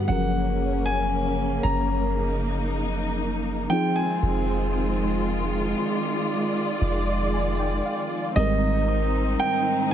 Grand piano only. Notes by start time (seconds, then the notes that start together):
0.08 F#5
0.86 G#5
1.63 A#5
3.70 G5
3.96 G#5
8.36 D#5
9.40 G5